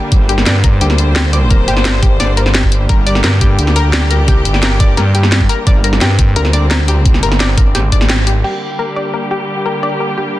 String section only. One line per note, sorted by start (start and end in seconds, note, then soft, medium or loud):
0.00 8.40 D3 medium
0.00 8.40 G3 medium
0.00 8.40 A#3 medium
0.00 0.11 G4 medium
0.12 2.88 C5 medium
2.89 5.66 G4 medium
5.67 8.43 C4 medium
8.44 10.39 D3 medium
8.44 10.39 G3 medium
8.44 10.39 A#3 medium
8.44 10.39 G4 medium